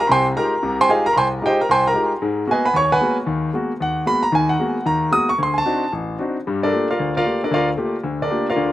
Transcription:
0.00 0.09 A#4 medium
0.07 0.32 C2 medium
0.07 0.32 C3 medium
0.07 0.09 B5 medium
0.11 0.26 C5 medium
0.11 0.26 G5 medium
0.11 0.26 G#5 medium
0.11 0.26 C6 loud
0.36 0.53 G#3 medium
0.36 0.53 D#4 soft
0.36 0.53 F4 soft
0.36 0.53 G4 medium
0.36 0.76 A#4 medium
0.36 0.76 A#5 loud
0.63 0.85 C2 medium
0.63 0.85 C3 medium
0.81 0.89 C5 medium
0.81 0.89 G5 medium
0.81 0.88 G#5 medium
0.81 0.89 C6 loud
0.89 1.06 G#3 soft
0.89 1.06 D#4 soft
0.89 1.06 F4 soft
0.89 1.06 G4 medium
0.89 1.05 G#4 medium
0.89 1.05 D#5 medium
0.89 1.05 F5 medium
0.89 1.05 G#5 medium
1.06 1.16 A#4 medium
1.06 1.15 A#5 loud
1.13 1.38 C2 medium
1.13 1.15 B5 medium
1.18 1.27 C5 medium
1.18 1.27 G5 medium
1.18 1.27 G#5 medium
1.18 1.26 C6 loud
1.42 1.59 G#3 soft
1.42 1.59 D#4 soft
1.42 1.59 F4 soft
1.42 1.45 G4 medium
1.42 1.59 G5 medium
1.47 1.60 G4 medium
1.47 1.60 C5 medium
1.47 1.60 D#5 medium
1.61 1.69 A#4 medium
1.61 1.69 A#5 medium
1.69 1.91 C2 medium
1.69 1.85 C5 medium
1.69 1.85 G5 medium
1.69 1.85 G#5 medium
1.69 1.85 C6 loud
1.87 2.10 A#4 medium
1.87 2.10 A#5 medium
1.94 2.11 G#3 medium
1.94 2.12 D#4 soft
1.94 2.12 F4 soft
1.94 2.12 G4 medium
2.22 2.44 G#2 medium
2.22 2.44 G#3 medium
2.47 2.65 G#3 medium
2.47 2.65 A#3 soft
2.47 2.64 B3 medium
2.47 2.65 F#4 medium
2.47 2.65 G#5 medium
2.52 2.65 G#4 medium
2.52 2.65 B4 medium
2.52 2.65 D#5 medium
2.65 2.75 B4 medium
2.65 2.75 F#5 medium
2.65 2.75 G#5 medium
2.65 2.75 B5 medium
2.74 2.96 D#2 medium
2.74 2.91 C#5 medium
2.74 2.91 C#6 loud
2.92 3.16 B4 medium
2.92 3.16 F#5 medium
2.92 3.16 G#5 medium
2.92 3.16 B5 medium
3.01 3.18 G#3 soft
3.01 3.18 A#3 soft
3.01 3.18 B3 soft
3.01 3.18 F#4 medium
3.26 3.49 D#2 medium
3.26 3.49 D#3 medium
3.54 3.71 G#3 medium
3.54 3.71 A#3 soft
3.54 3.71 B3 soft
3.54 3.71 F#4 medium
3.80 4.03 D#2 medium
3.80 4.06 F#5 medium
4.06 4.24 G#3 medium
4.06 4.23 A#3 soft
4.06 4.24 B3 soft
4.06 4.24 F#4 medium
4.06 4.23 B5 loud
4.23 4.33 A#5 loud
4.32 4.55 D#2 medium
4.32 4.55 D#3 medium
4.32 4.50 G#5 medium
4.49 4.84 F#5 medium
4.59 4.77 G#3 medium
4.59 4.77 A#3 soft
4.59 4.77 B3 medium
4.59 4.77 F#4 medium
4.85 5.08 D#2 medium
4.85 5.09 D#3 medium
4.85 5.11 A#5 medium
5.11 5.29 G#3 soft
5.11 5.29 A#3 soft
5.11 5.29 B3 soft
5.11 5.30 F#4 medium
5.11 5.28 D#6 loud
5.29 5.39 C#6 loud
5.39 5.61 D2 medium
5.43 5.57 C6 medium
5.58 5.91 A5 loud
5.65 5.83 C4 medium
5.65 5.83 D4 medium
5.65 5.83 D#4 soft
5.65 5.83 F#4 medium
5.93 6.15 A1 medium
6.19 6.36 C4 medium
6.19 6.36 D4 soft
6.19 6.36 D#4 soft
6.19 6.36 F#4 medium
6.47 6.69 G2 medium
6.47 6.69 G3 medium
6.63 6.87 D4 medium
6.63 6.87 A4 medium
6.63 6.87 A#4 medium
6.63 6.87 D5 medium
6.72 6.89 A3 soft
6.72 6.89 A#3 soft
6.72 6.89 F4 soft
6.72 6.90 G4 medium
6.90 7.14 F4 medium
6.90 7.14 A#4 medium
6.90 7.14 D5 medium
6.90 7.14 F5 medium
6.99 7.22 D2 medium
7.17 7.25 F4 medium
7.17 7.40 A#4 medium
7.17 7.40 D5 medium
7.17 7.41 F5 medium
7.25 7.42 A3 soft
7.25 7.42 A#3 soft
7.25 7.43 F4 soft
7.25 7.43 G4 medium
7.44 7.52 D4 medium
7.44 7.52 A4 soft
7.44 7.52 A#4 medium
7.44 7.52 D5 medium
7.51 7.74 D2 medium
7.51 7.68 F4 medium
7.51 7.69 A#4 medium
7.51 7.68 D5 medium
7.51 7.68 F5 medium
7.77 7.95 A3 soft
7.77 7.95 A#3 soft
7.77 7.95 F4 soft
7.77 7.95 G4 medium
8.04 8.27 D2 medium
8.04 8.27 D3 medium
8.22 8.46 D4 medium
8.22 8.46 A4 soft
8.22 8.46 A#4 medium
8.22 8.46 D5 medium
8.30 8.48 A3 soft
8.30 8.48 A#3 soft
8.30 8.48 F4 soft
8.30 8.48 G4 medium
8.50 8.72 F4 medium
8.50 8.72 A#4 medium
8.50 8.72 D5 medium
8.50 8.72 F5 medium
8.56 8.72 D2 medium
8.56 8.72 D3 medium

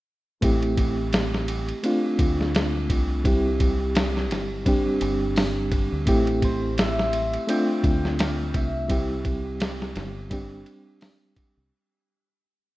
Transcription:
0.41 1.71 A1 medium
0.41 1.77 A3 medium
0.41 1.77 C4 medium
0.41 1.78 E4 medium
0.41 1.78 G4 medium
0.41 kick medium
0.41 ride medium
0.63 ride soft
0.77 kick medium
0.77 ride medium
1.13 snare loud
1.13 ride medium
1.34 snare soft
1.48 ride medium
1.69 ride soft
1.83 3.18 A3 medium
1.83 3.19 C4 medium
1.83 3.19 D4 medium
1.83 3.20 F4 medium
1.83 ride medium
2.19 2.86 D2 medium
2.19 kick medium
2.19 ride medium
2.41 snare soft
2.55 snare loud
2.55 ride medium
2.90 4.31 C2 medium
2.90 kick medium
2.90 ride medium
3.24 4.59 G3 medium
3.24 4.60 C4 medium
3.24 4.60 E4 medium
3.24 4.61 G4 medium
3.24 kick loud
3.24 ride medium
3.60 kick medium
3.60 ride medium
3.95 snare loud
3.95 ride medium
4.17 snare soft
4.31 4.98 G1 medium
4.31 snare soft
4.31 ride medium
4.65 6.00 G3 medium
4.65 6.01 C4 medium
4.65 6.01 D4 medium
4.65 6.02 G4 medium
4.65 kick loud
4.65 ride medium
5.01 5.88 G1 medium
5.01 ride medium
5.36 snare loud
5.36 open hi-hat medium
5.72 kick medium
5.72 ride medium
5.92 6.05 D2 medium
6.06 7.36 A1 medium
6.06 7.41 A3 medium
6.06 7.42 C4 medium
6.06 7.42 E4 medium
6.06 7.43 G4 medium
6.06 kick medium
6.06 ride medium
6.27 ride soft
6.42 9.08 C5 medium
6.42 kick medium
6.42 ride medium
6.78 8.26 E5 loud
6.78 snare loud
6.78 ride medium
6.99 snare soft
7.13 ride medium
7.33 ride soft
7.47 8.83 A3 medium
7.47 8.83 C4 medium
7.47 8.84 D4 medium
7.47 8.84 F4 medium
7.47 9.57 G5 loud
7.47 ride medium
7.84 8.51 D2 medium
7.84 kick loud
7.84 ride medium
8.05 snare soft
8.19 8.49 F5 medium
8.19 snare loud
8.19 ride medium
8.50 8.62 F5 medium
8.54 9.98 C2 medium
8.54 11.33 E5 medium
8.54 kick medium
8.54 ride medium
8.88 10.24 G3 medium
8.88 10.24 C4 medium
8.88 10.25 E4 medium
8.88 10.25 G4 medium
8.88 kick loud
8.88 ride medium
9.25 kick medium
9.25 ride medium
9.60 snare loud
9.60 ride medium
9.82 snare soft
9.96 10.63 G1 medium
9.96 snare medium
9.96 ride medium
10.30 11.65 G3 medium
10.30 11.66 C4 medium
10.30 11.66 D4 medium
10.30 11.67 G4 medium
10.30 kick loud
10.30 ride medium
10.66 ride medium
11.01 snare medium
11.01 open hi-hat medium
11.36 kick medium
11.36 ride medium
11.57 11.70 C2 medium

